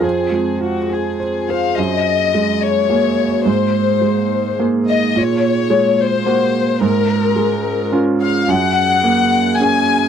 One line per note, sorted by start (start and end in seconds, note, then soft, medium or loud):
0.00 1.72 F2 soft
0.00 1.78 C4 medium
0.00 1.78 F4 medium
0.00 0.20 G#4 soft
0.00 1.74 G#4 medium
0.00 0.56 G#4 soft
0.00 1.16 C5 soft
0.31 0.79 G#3 soft
0.60 1.08 F4 soft
0.60 0.89 F#4 soft
0.90 1.37 G#4 soft
0.90 1.50 G#4 soft
1.20 1.66 C5 soft
1.49 1.78 G#4 soft
1.49 1.78 C5 soft
1.49 1.76 F5 medium
1.77 3.43 F#2 soft
1.77 6.79 A#3 medium
1.77 3.43 F#4 medium
1.77 6.79 G#4 medium
1.77 2.63 D#5 medium
2.34 3.25 G#3 soft
2.63 3.47 C#5 medium
2.90 3.43 A#3 soft
2.90 3.43 G#4 soft
3.45 5.11 G#2 medium
3.45 5.16 D#4 medium
3.45 4.58 C5 medium
4.01 4.92 G#3 soft
4.59 5.11 A#3 soft
4.59 5.12 G#4 soft
4.88 5.14 D#5 medium
5.16 6.79 A#2 medium
5.16 6.82 F#4 medium
5.16 6.00 C#5 medium
5.70 6.60 G#3 soft
6.00 6.83 C5 medium
6.26 6.78 A#3 soft
6.26 6.78 F#4 soft
6.81 8.44 G#2 medium
6.81 10.08 C#4 medium
6.81 8.48 F4 medium
6.81 8.45 G#4 medium
6.81 7.91 A#4 medium
7.36 8.26 G#3 medium
7.92 8.44 C#4 soft
7.92 8.44 F4 medium
8.22 8.47 F5 medium
8.48 10.08 F#2 medium
8.48 10.08 G#4 medium
8.48 10.08 A#4 medium
8.48 9.60 F#5 loud
9.04 9.93 A#3 medium
9.59 10.08 C#4 soft
9.59 10.08 G#4 medium
9.59 10.08 G#5 medium